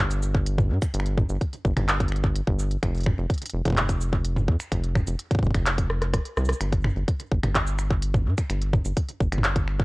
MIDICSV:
0, 0, Header, 1, 3, 480
1, 0, Start_track
1, 0, Tempo, 472441
1, 953, Time_signature, 4, 2, 24, 8
1, 10004, End_track
2, 0, Start_track
2, 0, Title_t, "Analog synth bass"
2, 0, Program_c, 0, 38
2, 0, Note_on_c, 0, 31, 105
2, 713, Note_on_c, 0, 43, 89
2, 728, Note_off_c, 0, 31, 0
2, 795, Note_off_c, 0, 43, 0
2, 952, Note_on_c, 0, 31, 106
2, 1252, Note_off_c, 0, 31, 0
2, 1313, Note_on_c, 0, 31, 91
2, 1395, Note_off_c, 0, 31, 0
2, 1673, Note_on_c, 0, 31, 83
2, 1755, Note_off_c, 0, 31, 0
2, 1793, Note_on_c, 0, 31, 100
2, 2452, Note_off_c, 0, 31, 0
2, 2513, Note_on_c, 0, 31, 98
2, 2812, Note_off_c, 0, 31, 0
2, 2873, Note_on_c, 0, 29, 109
2, 3172, Note_off_c, 0, 29, 0
2, 3233, Note_on_c, 0, 29, 92
2, 3315, Note_off_c, 0, 29, 0
2, 3593, Note_on_c, 0, 29, 85
2, 3675, Note_off_c, 0, 29, 0
2, 3713, Note_on_c, 0, 29, 103
2, 4553, Note_on_c, 0, 41, 92
2, 4569, Note_off_c, 0, 29, 0
2, 4635, Note_off_c, 0, 41, 0
2, 4793, Note_on_c, 0, 29, 104
2, 5092, Note_off_c, 0, 29, 0
2, 5153, Note_on_c, 0, 29, 86
2, 5235, Note_off_c, 0, 29, 0
2, 5513, Note_on_c, 0, 29, 84
2, 5595, Note_off_c, 0, 29, 0
2, 5633, Note_on_c, 0, 29, 103
2, 6292, Note_off_c, 0, 29, 0
2, 6473, Note_on_c, 0, 36, 107
2, 6637, Note_off_c, 0, 36, 0
2, 6713, Note_on_c, 0, 31, 107
2, 7012, Note_off_c, 0, 31, 0
2, 7073, Note_on_c, 0, 31, 90
2, 7155, Note_off_c, 0, 31, 0
2, 7433, Note_on_c, 0, 31, 86
2, 7515, Note_off_c, 0, 31, 0
2, 7552, Note_on_c, 0, 31, 101
2, 8393, Note_on_c, 0, 43, 90
2, 8408, Note_off_c, 0, 31, 0
2, 8475, Note_off_c, 0, 43, 0
2, 8633, Note_on_c, 0, 31, 105
2, 8932, Note_off_c, 0, 31, 0
2, 8992, Note_on_c, 0, 31, 91
2, 9074, Note_off_c, 0, 31, 0
2, 9352, Note_on_c, 0, 31, 87
2, 9434, Note_off_c, 0, 31, 0
2, 9473, Note_on_c, 0, 31, 101
2, 10004, Note_off_c, 0, 31, 0
2, 10004, End_track
3, 0, Start_track
3, 0, Title_t, "Drums"
3, 112, Note_on_c, 9, 42, 51
3, 112, Note_on_c, 9, 69, 84
3, 214, Note_off_c, 9, 42, 0
3, 214, Note_off_c, 9, 69, 0
3, 232, Note_on_c, 9, 69, 84
3, 333, Note_off_c, 9, 69, 0
3, 353, Note_on_c, 9, 36, 123
3, 454, Note_off_c, 9, 36, 0
3, 472, Note_on_c, 9, 42, 74
3, 574, Note_off_c, 9, 42, 0
3, 593, Note_on_c, 9, 36, 107
3, 593, Note_on_c, 9, 45, 94
3, 694, Note_off_c, 9, 36, 0
3, 694, Note_off_c, 9, 45, 0
3, 833, Note_on_c, 9, 26, 52
3, 833, Note_on_c, 9, 36, 106
3, 833, Note_on_c, 9, 42, 37
3, 833, Note_on_c, 9, 69, 85
3, 935, Note_off_c, 9, 26, 0
3, 935, Note_off_c, 9, 36, 0
3, 935, Note_off_c, 9, 42, 0
3, 935, Note_off_c, 9, 69, 0
3, 953, Note_on_c, 9, 42, 77
3, 1014, Note_on_c, 9, 26, 62
3, 1055, Note_off_c, 9, 42, 0
3, 1074, Note_on_c, 9, 42, 37
3, 1115, Note_off_c, 9, 26, 0
3, 1175, Note_off_c, 9, 42, 0
3, 1193, Note_on_c, 9, 36, 122
3, 1193, Note_on_c, 9, 45, 106
3, 1294, Note_off_c, 9, 36, 0
3, 1295, Note_off_c, 9, 45, 0
3, 1313, Note_on_c, 9, 69, 83
3, 1415, Note_off_c, 9, 69, 0
3, 1433, Note_on_c, 9, 36, 98
3, 1433, Note_on_c, 9, 42, 77
3, 1535, Note_off_c, 9, 36, 0
3, 1535, Note_off_c, 9, 42, 0
3, 1553, Note_on_c, 9, 42, 36
3, 1655, Note_off_c, 9, 42, 0
3, 1673, Note_on_c, 9, 36, 105
3, 1775, Note_off_c, 9, 36, 0
3, 1793, Note_on_c, 9, 26, 79
3, 1793, Note_on_c, 9, 42, 51
3, 1793, Note_on_c, 9, 45, 99
3, 1895, Note_off_c, 9, 26, 0
3, 1895, Note_off_c, 9, 42, 0
3, 1895, Note_off_c, 9, 45, 0
3, 1913, Note_on_c, 9, 39, 114
3, 1913, Note_on_c, 9, 42, 81
3, 2015, Note_off_c, 9, 39, 0
3, 2015, Note_off_c, 9, 42, 0
3, 2033, Note_on_c, 9, 36, 116
3, 2033, Note_on_c, 9, 42, 50
3, 2114, Note_off_c, 9, 42, 0
3, 2114, Note_on_c, 9, 42, 41
3, 2135, Note_off_c, 9, 36, 0
3, 2154, Note_on_c, 9, 26, 52
3, 2194, Note_off_c, 9, 42, 0
3, 2194, Note_on_c, 9, 42, 33
3, 2256, Note_off_c, 9, 26, 0
3, 2273, Note_on_c, 9, 36, 109
3, 2296, Note_off_c, 9, 42, 0
3, 2375, Note_off_c, 9, 36, 0
3, 2394, Note_on_c, 9, 42, 79
3, 2495, Note_off_c, 9, 42, 0
3, 2513, Note_on_c, 9, 36, 107
3, 2615, Note_off_c, 9, 36, 0
3, 2634, Note_on_c, 9, 69, 84
3, 2736, Note_off_c, 9, 69, 0
3, 2754, Note_on_c, 9, 42, 36
3, 2856, Note_off_c, 9, 42, 0
3, 2873, Note_on_c, 9, 36, 120
3, 2874, Note_on_c, 9, 26, 63
3, 2874, Note_on_c, 9, 42, 77
3, 2975, Note_off_c, 9, 26, 0
3, 2975, Note_off_c, 9, 36, 0
3, 2975, Note_off_c, 9, 42, 0
3, 2994, Note_on_c, 9, 42, 16
3, 3024, Note_off_c, 9, 42, 0
3, 3024, Note_on_c, 9, 42, 20
3, 3054, Note_off_c, 9, 42, 0
3, 3054, Note_on_c, 9, 42, 25
3, 3084, Note_off_c, 9, 42, 0
3, 3084, Note_on_c, 9, 42, 30
3, 3113, Note_on_c, 9, 36, 102
3, 3114, Note_on_c, 9, 26, 66
3, 3114, Note_on_c, 9, 45, 105
3, 3185, Note_off_c, 9, 42, 0
3, 3215, Note_off_c, 9, 26, 0
3, 3215, Note_off_c, 9, 36, 0
3, 3215, Note_off_c, 9, 45, 0
3, 3353, Note_on_c, 9, 36, 98
3, 3354, Note_on_c, 9, 42, 34
3, 3393, Note_off_c, 9, 42, 0
3, 3393, Note_on_c, 9, 42, 43
3, 3434, Note_off_c, 9, 42, 0
3, 3434, Note_on_c, 9, 42, 46
3, 3455, Note_off_c, 9, 36, 0
3, 3474, Note_off_c, 9, 42, 0
3, 3474, Note_on_c, 9, 42, 56
3, 3514, Note_off_c, 9, 42, 0
3, 3514, Note_on_c, 9, 42, 64
3, 3553, Note_off_c, 9, 42, 0
3, 3553, Note_on_c, 9, 42, 70
3, 3655, Note_off_c, 9, 42, 0
3, 3713, Note_on_c, 9, 36, 110
3, 3714, Note_on_c, 9, 42, 53
3, 3714, Note_on_c, 9, 45, 45
3, 3737, Note_off_c, 9, 36, 0
3, 3737, Note_on_c, 9, 36, 88
3, 3761, Note_off_c, 9, 36, 0
3, 3761, Note_on_c, 9, 36, 75
3, 3785, Note_off_c, 9, 36, 0
3, 3785, Note_on_c, 9, 36, 62
3, 3794, Note_off_c, 9, 45, 0
3, 3794, Note_on_c, 9, 45, 62
3, 3809, Note_off_c, 9, 36, 0
3, 3809, Note_on_c, 9, 36, 49
3, 3815, Note_off_c, 9, 42, 0
3, 3833, Note_on_c, 9, 39, 118
3, 3833, Note_on_c, 9, 42, 78
3, 3873, Note_off_c, 9, 45, 0
3, 3873, Note_on_c, 9, 45, 77
3, 3911, Note_off_c, 9, 36, 0
3, 3935, Note_off_c, 9, 39, 0
3, 3935, Note_off_c, 9, 42, 0
3, 3953, Note_on_c, 9, 36, 105
3, 3954, Note_on_c, 9, 42, 55
3, 3954, Note_on_c, 9, 69, 85
3, 3975, Note_off_c, 9, 45, 0
3, 4055, Note_off_c, 9, 36, 0
3, 4055, Note_off_c, 9, 42, 0
3, 4055, Note_off_c, 9, 69, 0
3, 4074, Note_on_c, 9, 69, 88
3, 4175, Note_off_c, 9, 69, 0
3, 4193, Note_on_c, 9, 36, 101
3, 4295, Note_off_c, 9, 36, 0
3, 4314, Note_on_c, 9, 42, 77
3, 4415, Note_off_c, 9, 42, 0
3, 4434, Note_on_c, 9, 45, 102
3, 4535, Note_off_c, 9, 45, 0
3, 4553, Note_on_c, 9, 36, 113
3, 4655, Note_off_c, 9, 36, 0
3, 4674, Note_on_c, 9, 26, 54
3, 4674, Note_on_c, 9, 42, 38
3, 4674, Note_on_c, 9, 69, 80
3, 4775, Note_off_c, 9, 26, 0
3, 4775, Note_off_c, 9, 42, 0
3, 4775, Note_off_c, 9, 69, 0
3, 4793, Note_on_c, 9, 36, 104
3, 4794, Note_on_c, 9, 26, 65
3, 4794, Note_on_c, 9, 42, 81
3, 4895, Note_off_c, 9, 26, 0
3, 4895, Note_off_c, 9, 36, 0
3, 4895, Note_off_c, 9, 42, 0
3, 4913, Note_on_c, 9, 42, 37
3, 5015, Note_off_c, 9, 42, 0
3, 5033, Note_on_c, 9, 26, 69
3, 5033, Note_on_c, 9, 36, 106
3, 5033, Note_on_c, 9, 45, 99
3, 5135, Note_off_c, 9, 26, 0
3, 5135, Note_off_c, 9, 36, 0
3, 5135, Note_off_c, 9, 45, 0
3, 5153, Note_on_c, 9, 42, 38
3, 5153, Note_on_c, 9, 69, 84
3, 5255, Note_off_c, 9, 42, 0
3, 5255, Note_off_c, 9, 69, 0
3, 5273, Note_on_c, 9, 42, 81
3, 5375, Note_off_c, 9, 42, 0
3, 5393, Note_on_c, 9, 36, 112
3, 5393, Note_on_c, 9, 42, 39
3, 5433, Note_off_c, 9, 36, 0
3, 5433, Note_on_c, 9, 36, 89
3, 5473, Note_off_c, 9, 36, 0
3, 5473, Note_on_c, 9, 36, 75
3, 5495, Note_off_c, 9, 42, 0
3, 5513, Note_off_c, 9, 36, 0
3, 5513, Note_on_c, 9, 36, 62
3, 5553, Note_off_c, 9, 36, 0
3, 5553, Note_on_c, 9, 36, 52
3, 5593, Note_off_c, 9, 36, 0
3, 5593, Note_on_c, 9, 36, 43
3, 5633, Note_off_c, 9, 36, 0
3, 5633, Note_on_c, 9, 26, 86
3, 5633, Note_on_c, 9, 36, 99
3, 5633, Note_on_c, 9, 42, 54
3, 5735, Note_off_c, 9, 26, 0
3, 5735, Note_off_c, 9, 36, 0
3, 5735, Note_off_c, 9, 42, 0
3, 5753, Note_on_c, 9, 39, 117
3, 5753, Note_on_c, 9, 42, 86
3, 5854, Note_off_c, 9, 39, 0
3, 5854, Note_off_c, 9, 42, 0
3, 5873, Note_on_c, 9, 36, 104
3, 5873, Note_on_c, 9, 42, 56
3, 5974, Note_off_c, 9, 36, 0
3, 5974, Note_off_c, 9, 42, 0
3, 5993, Note_on_c, 9, 37, 64
3, 6094, Note_off_c, 9, 37, 0
3, 6113, Note_on_c, 9, 37, 61
3, 6113, Note_on_c, 9, 42, 37
3, 6214, Note_off_c, 9, 37, 0
3, 6214, Note_off_c, 9, 42, 0
3, 6232, Note_on_c, 9, 37, 82
3, 6232, Note_on_c, 9, 42, 83
3, 6233, Note_on_c, 9, 36, 122
3, 6334, Note_off_c, 9, 36, 0
3, 6334, Note_off_c, 9, 37, 0
3, 6334, Note_off_c, 9, 42, 0
3, 6353, Note_on_c, 9, 42, 39
3, 6454, Note_off_c, 9, 42, 0
3, 6473, Note_on_c, 9, 37, 75
3, 6473, Note_on_c, 9, 69, 36
3, 6553, Note_off_c, 9, 69, 0
3, 6553, Note_on_c, 9, 69, 49
3, 6575, Note_off_c, 9, 37, 0
3, 6593, Note_on_c, 9, 37, 89
3, 6593, Note_on_c, 9, 42, 38
3, 6633, Note_off_c, 9, 69, 0
3, 6633, Note_on_c, 9, 69, 66
3, 6695, Note_off_c, 9, 37, 0
3, 6695, Note_off_c, 9, 42, 0
3, 6713, Note_on_c, 9, 26, 63
3, 6713, Note_on_c, 9, 42, 81
3, 6734, Note_off_c, 9, 69, 0
3, 6814, Note_off_c, 9, 26, 0
3, 6814, Note_off_c, 9, 42, 0
3, 6833, Note_on_c, 9, 36, 108
3, 6833, Note_on_c, 9, 42, 39
3, 6934, Note_off_c, 9, 36, 0
3, 6935, Note_off_c, 9, 42, 0
3, 6953, Note_on_c, 9, 26, 67
3, 6953, Note_on_c, 9, 45, 99
3, 7055, Note_off_c, 9, 26, 0
3, 7055, Note_off_c, 9, 45, 0
3, 7193, Note_on_c, 9, 36, 115
3, 7193, Note_on_c, 9, 42, 82
3, 7294, Note_off_c, 9, 36, 0
3, 7294, Note_off_c, 9, 42, 0
3, 7313, Note_on_c, 9, 42, 40
3, 7414, Note_off_c, 9, 42, 0
3, 7433, Note_on_c, 9, 36, 109
3, 7534, Note_off_c, 9, 36, 0
3, 7553, Note_on_c, 9, 26, 84
3, 7553, Note_on_c, 9, 42, 58
3, 7553, Note_on_c, 9, 45, 93
3, 7654, Note_off_c, 9, 26, 0
3, 7654, Note_off_c, 9, 42, 0
3, 7654, Note_off_c, 9, 45, 0
3, 7673, Note_on_c, 9, 36, 112
3, 7673, Note_on_c, 9, 39, 119
3, 7673, Note_on_c, 9, 42, 85
3, 7774, Note_off_c, 9, 36, 0
3, 7774, Note_off_c, 9, 39, 0
3, 7774, Note_off_c, 9, 42, 0
3, 7792, Note_on_c, 9, 69, 77
3, 7894, Note_off_c, 9, 69, 0
3, 7912, Note_on_c, 9, 26, 57
3, 7912, Note_on_c, 9, 69, 78
3, 8014, Note_off_c, 9, 26, 0
3, 8014, Note_off_c, 9, 69, 0
3, 8032, Note_on_c, 9, 36, 121
3, 8134, Note_off_c, 9, 36, 0
3, 8152, Note_on_c, 9, 42, 86
3, 8254, Note_off_c, 9, 42, 0
3, 8272, Note_on_c, 9, 36, 108
3, 8272, Note_on_c, 9, 45, 95
3, 8374, Note_off_c, 9, 36, 0
3, 8374, Note_off_c, 9, 45, 0
3, 8512, Note_on_c, 9, 26, 56
3, 8512, Note_on_c, 9, 36, 102
3, 8512, Note_on_c, 9, 42, 39
3, 8512, Note_on_c, 9, 69, 78
3, 8614, Note_off_c, 9, 26, 0
3, 8614, Note_off_c, 9, 36, 0
3, 8614, Note_off_c, 9, 42, 0
3, 8614, Note_off_c, 9, 69, 0
3, 8632, Note_on_c, 9, 26, 63
3, 8632, Note_on_c, 9, 42, 82
3, 8733, Note_off_c, 9, 26, 0
3, 8733, Note_off_c, 9, 42, 0
3, 8753, Note_on_c, 9, 42, 41
3, 8854, Note_off_c, 9, 42, 0
3, 8872, Note_on_c, 9, 36, 127
3, 8872, Note_on_c, 9, 45, 94
3, 8974, Note_off_c, 9, 36, 0
3, 8974, Note_off_c, 9, 45, 0
3, 8992, Note_on_c, 9, 69, 77
3, 9094, Note_off_c, 9, 69, 0
3, 9112, Note_on_c, 9, 42, 84
3, 9113, Note_on_c, 9, 36, 113
3, 9214, Note_off_c, 9, 36, 0
3, 9214, Note_off_c, 9, 42, 0
3, 9232, Note_on_c, 9, 42, 40
3, 9334, Note_off_c, 9, 42, 0
3, 9353, Note_on_c, 9, 36, 113
3, 9454, Note_off_c, 9, 36, 0
3, 9473, Note_on_c, 9, 26, 81
3, 9473, Note_on_c, 9, 42, 58
3, 9532, Note_on_c, 9, 45, 90
3, 9574, Note_off_c, 9, 26, 0
3, 9574, Note_off_c, 9, 42, 0
3, 9592, Note_on_c, 9, 39, 125
3, 9592, Note_on_c, 9, 42, 82
3, 9633, Note_off_c, 9, 45, 0
3, 9694, Note_off_c, 9, 39, 0
3, 9694, Note_off_c, 9, 42, 0
3, 9712, Note_on_c, 9, 42, 56
3, 9713, Note_on_c, 9, 36, 127
3, 9814, Note_off_c, 9, 36, 0
3, 9814, Note_off_c, 9, 42, 0
3, 9833, Note_on_c, 9, 26, 55
3, 9934, Note_off_c, 9, 26, 0
3, 9953, Note_on_c, 9, 36, 113
3, 10004, Note_off_c, 9, 36, 0
3, 10004, End_track
0, 0, End_of_file